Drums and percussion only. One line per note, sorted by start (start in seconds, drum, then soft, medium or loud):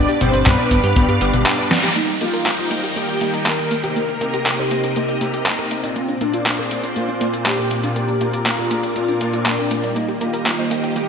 0.09 closed hi-hat soft
0.09 cabasa soft
0.21 closed hi-hat loud
0.21 high tom medium
0.21 cabasa medium
0.34 closed hi-hat medium
0.34 cabasa soft
0.46 kick loud
0.46 clap loud
0.46 closed hi-hat medium
0.46 high tom medium
0.46 cabasa soft
0.59 closed hi-hat soft
0.59 cabasa soft
0.71 kick medium
0.71 closed hi-hat loud
0.71 cabasa medium
0.84 closed hi-hat medium
0.84 cabasa soft
0.96 kick loud
0.96 closed hi-hat medium
0.96 cabasa soft
1.09 closed hi-hat soft
1.09 cabasa soft
1.21 closed hi-hat loud
1.21 cabasa medium
1.34 closed hi-hat medium
1.34 high tom medium
1.34 cabasa soft
1.46 clap loud
1.46 closed hi-hat medium
1.46 cabasa soft
1.58 closed hi-hat soft
1.58 cabasa soft
1.71 snare loud
1.71 closed hi-hat loud
1.71 cabasa medium
1.83 closed hi-hat medium
1.83 cabasa soft
1.96 closed hi-hat soft
2.08 closed hi-hat soft
2.21 closed hi-hat medium
2.34 closed hi-hat medium
2.46 clap loud
2.46 closed hi-hat soft
2.59 closed hi-hat soft
2.71 closed hi-hat medium
2.84 closed hi-hat soft
2.96 closed hi-hat soft
3.09 closed hi-hat soft
3.21 closed hi-hat medium
3.34 closed hi-hat soft
3.46 clap loud
3.46 closed hi-hat soft
3.59 closed hi-hat soft
3.71 closed hi-hat medium
3.84 closed hi-hat soft
3.96 closed hi-hat soft
4.09 closed hi-hat soft
4.21 closed hi-hat medium
4.34 closed hi-hat medium
4.46 clap loud
4.46 closed hi-hat soft
4.59 closed hi-hat soft
4.71 closed hi-hat medium
4.84 closed hi-hat soft
4.96 closed hi-hat soft
5.09 closed hi-hat soft
5.21 closed hi-hat medium
5.34 closed hi-hat soft
5.46 clap loud
5.46 closed hi-hat soft
5.59 closed hi-hat soft
5.71 closed hi-hat medium
5.84 closed hi-hat soft
5.96 closed hi-hat soft
6.09 closed hi-hat soft
6.21 closed hi-hat medium
6.34 closed hi-hat soft
6.46 clap loud
6.46 closed hi-hat soft
6.59 closed hi-hat soft
6.71 closed hi-hat medium
6.84 closed hi-hat soft
6.96 closed hi-hat soft
7.09 closed hi-hat soft
7.21 closed hi-hat medium
7.34 closed hi-hat soft
7.46 clap loud
7.46 closed hi-hat soft
7.59 closed hi-hat soft
7.71 closed hi-hat medium
7.83 closed hi-hat soft
7.96 closed hi-hat soft
8.08 closed hi-hat soft
8.21 closed hi-hat medium
8.33 closed hi-hat soft
8.46 clap loud
8.46 closed hi-hat soft
8.58 closed hi-hat soft
8.71 closed hi-hat medium
8.83 closed hi-hat soft
8.96 closed hi-hat soft
9.08 closed hi-hat soft
9.21 closed hi-hat medium
9.33 closed hi-hat soft
9.46 clap loud
9.46 closed hi-hat soft
9.58 closed hi-hat soft
9.71 closed hi-hat medium
9.83 closed hi-hat soft
9.96 closed hi-hat soft
10.09 closed hi-hat soft
10.21 closed hi-hat medium
10.34 closed hi-hat soft
10.46 clap loud
10.46 closed hi-hat soft
10.59 closed hi-hat soft
10.71 closed hi-hat medium
10.84 closed hi-hat soft
10.96 closed hi-hat soft